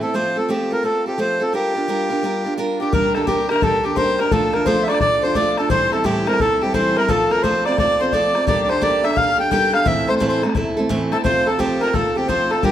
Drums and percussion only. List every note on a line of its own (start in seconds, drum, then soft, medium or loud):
2.93 bodhran medium
3.04 bodhran soft
3.15 bodhran medium
3.27 bodhran medium
3.49 bodhran medium
3.56 bodhran medium
3.62 bodhran medium
3.97 bodhran medium
4.19 bodhran medium
4.31 bodhran medium
4.42 bodhran soft
4.54 bodhran medium
4.66 bodhran medium
4.88 bodhran medium
4.94 bodhran medium
5.00 bodhran medium
5.35 bodhran medium
5.57 bodhran medium
5.70 bodhran medium
5.81 bodhran soft
5.92 bodhran medium
6.05 bodhran medium
6.27 bodhran medium
6.34 bodhran medium
6.40 bodhran medium
6.74 bodhran medium
6.97 bodhran medium
7.09 bodhran medium
7.20 bodhran soft
7.31 bodhran medium
7.44 bodhran medium
7.66 bodhran medium
7.72 bodhran medium
7.78 bodhran medium
8.13 bodhran medium
8.35 bodhran medium
8.47 bodhran medium
8.59 bodhran soft
8.70 bodhran medium
8.82 bodhran medium
9.04 bodhran medium
9.11 bodhran medium
9.17 bodhran medium
9.52 bodhran medium
9.74 bodhran medium
9.86 bodhran medium
9.97 bodhran soft
10.08 bodhran medium
10.21 bodhran medium
10.43 bodhran medium
10.49 bodhran medium
10.55 bodhran medium
10.90 bodhran medium
11.12 bodhran medium
11.25 bodhran medium
11.36 bodhran soft
11.47 bodhran medium
11.60 bodhran medium
11.81 bodhran medium
11.88 bodhran medium
11.94 bodhran medium
12.29 bodhran medium
12.51 bodhran medium
12.63 bodhran medium